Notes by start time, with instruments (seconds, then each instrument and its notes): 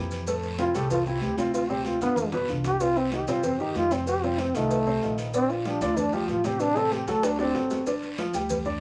Already playing: upright bass F2, upright piano E3 E4 G4
0.11 cowbell, short guiro, maracas
0.27 upright piano A2 A3 A4, cowbell, high conga, long guiro, maracas
0.43 cowbell, high conga, maracas
0.58 upright piano C3 C4 E4, trombone F4, cowbell, high conga, short guiro, maracas
0.74 upright bass C2, upright piano A2 A3 A4, trombone G4, cowbell, high conga, short guiro, maracas
0.90 trombone F4, cowbell, high conga, low conga, long guiro, maracas
1.06 upright piano C3 C4 E4, trombone F4, high conga, maracas
1.21 upright bass D2, trombone G4, cowbell, high conga, short guiro, maracas
1.38 upright piano C3 C4 C5, trombone F4, cowbell, high conga, short guiro, maracas
1.53 trombone F4, cowbell, high conga, long guiro, maracas
1.69 upright piano C3 C4 C5, trombone G4, high conga, maracas
1.85 trombone F4, cowbell, high conga, short guiro, maracas
2.01 upright bass G1, upright piano D3 D4 F4, trombone B3, cowbell, short guiro, maracas
2.16 cowbell, low conga, long guiro, maracas
2.32 upright piano B2 B3 B4, low conga, maracas
2.48 upright bass C2, upright piano D3 D4 F4, cowbell, low conga, short guiro, maracas
2.64 trombone G4, cowbell, low conga, short guiro, maracas
2.80 upright piano C3 C4 C5, trombone F4, cowbell, high conga, long guiro, maracas
2.96 trombone C4, cowbell, high conga, maracas
3.12 upright piano D#3 D#4 G4, trombone G4, cowbell, high conga, short guiro, maracas
3.27 upright bass G2, upright piano C3 C4 C5, trombone F4, cowbell, high conga, short guiro, maracas
3.43 trombone C4, cowbell, high conga, low conga, long guiro, maracas
3.60 upright piano D#3 D#4 G4, trombone G4, high conga, maracas
3.75 upright bass F2, trombone F4, cowbell, high conga, short guiro, maracas
3.91 upright piano C3 C4 C5, trombone C4, cowbell, high conga, short guiro, maracas
4.07 trombone G4, cowbell, high conga, long guiro, maracas
4.23 upright piano C3 C4 C5, trombone F4, high conga, maracas
4.39 trombone C4, cowbell, high conga, short guiro, maracas
4.54 upright bass C2, upright piano D#3 D#4 F4, trombone A3, cowbell, high conga, short guiro, maracas
4.70 cowbell, high conga, long guiro, maracas
4.86 upright piano C3 C4 C5, high conga, maracas
5.02 upright bass A#1, upright piano D#3 D#4 F4, cowbell, high conga, short guiro, maracas
5.18 cowbell, short guiro, maracas
5.34 upright piano D3 D4 D5, trombone C4, cowbell, high conga, long guiro, maracas
5.50 trombone F4, cowbell, high conga, maracas
5.65 upright piano F3 F4 G4, trombone D4, cowbell, high conga, short guiro, maracas
5.81 upright bass D2, upright piano D3 D4 D5, trombone F4, cowbell, high conga, short guiro, maracas
5.97 trombone D4, cowbell, high conga, low conga, long guiro, maracas
6.13 upright piano F3 F4 G4, trombone G4, high conga, maracas
6.28 upright bass A1, trombone F4, cowbell, high conga, short guiro, maracas
6.44 upright piano C3 C4 C5, trombone G4, cowbell, high conga, short guiro, maracas
6.60 trombone D4, cowbell, high conga, long guiro, maracas
6.76 upright piano C3 C4 C5, trombone A4, high conga, maracas
6.92 trombone G4, cowbell, high conga, short guiro, maracas
7.07 upright bass D2, upright piano F#3 F#4 A4, trombone A4, cowbell, high conga, short guiro, maracas
7.23 trombone D4, cowbell, high bongo, high conga, long guiro, maracas
7.39 upright piano D3 D4 D5, trombone C4, low bongo, high conga, maracas
7.55 upright bass G1, upright piano F#3 F#4 A4, cowbell, low bongo, high conga, short guiro, maracas
7.70 cowbell, low bongo, high conga, short guiro, maracas
7.86 upright piano D3 D4 D5, cowbell, high conga, long guiro, maracas
8.02 cowbell, high conga, maracas
8.18 upright piano F3 F4 F5, cowbell, high conga, short guiro, maracas
8.33 upright bass D2, upright piano G3 G4 G5, cowbell, high conga, short guiro, maracas
8.49 cowbell, high conga, low conga, long guiro, maracas
8.65 upright piano D4 D5 D6, high conga, low conga, maracas